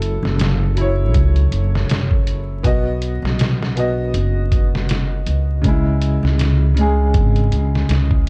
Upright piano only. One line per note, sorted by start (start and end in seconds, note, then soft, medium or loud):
0.00 0.72 F#3 medium
0.00 0.73 E4 medium
0.00 0.75 A4 medium
0.74 2.59 F#3 medium
0.74 2.61 E4 medium
0.81 2.63 C#5 medium
2.63 2.97 B3 medium
2.63 2.98 F#4 medium
2.63 2.98 D#5 loud
3.76 3.99 B3 medium
3.76 4.00 F#4 medium
3.76 4.01 D#5 medium
5.62 6.71 C#3 medium
5.62 6.73 G#3 medium
5.68 6.75 E4 medium
6.74 8.29 C#3 medium
6.74 8.29 G#3 medium
6.81 8.29 G#4 loud